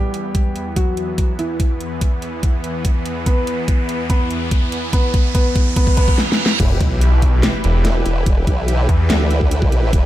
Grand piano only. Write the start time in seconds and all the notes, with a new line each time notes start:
Already playing: G3 G4
0.76 F#3 F#4
1.39 E3 E4
3.26 B3 B4
4.10 B3 B4
4.93 B3 B4
5.35 B3 B4
5.76 B3 B4
5.97 B3 B4